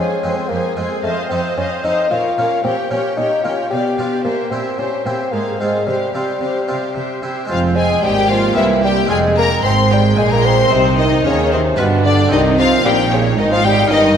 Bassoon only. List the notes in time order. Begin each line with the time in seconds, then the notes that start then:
Already playing: C#4
0.36 C4
0.49 A#3
1.03 A3
1.29 C4
1.57 C#4
1.84 D#4
2.11 F4
2.64 C4
2.91 C#4
3.17 D#4
3.44 F4
3.70 G4
4.25 A#3
4.51 C4
4.78 C#4
5.06 C4
5.32 A#3
5.60 G#3
5.87 G3
7.49 F3
7.76 G#3
8.03 G3
8.30 F3
8.57 E3
8.85 G3
9.11 G#3
9.38 A#3
9.65 C4
9.93 G3
10.18 G#3
10.33 A#3
10.46 C4
10.72 C3
10.99 D#3
11.26 C#3
11.54 C3
11.79 B2
12.06 D3
12.33 D#3
12.59 F3
12.85 G3
13.14 C#3
13.40 D#3
13.52 F3
13.66 G3
13.92 D#3